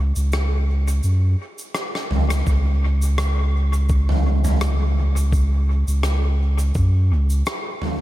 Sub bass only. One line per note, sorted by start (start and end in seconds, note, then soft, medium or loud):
0.00 0.12 C#2 medium
0.16 1.01 C#2 medium
1.04 1.36 F#2 medium
2.11 2.43 C#2 loud
2.47 5.84 C#2 loud
5.87 6.72 C#2 medium
6.75 7.12 F#2 medium
7.11 7.43 C#2 loud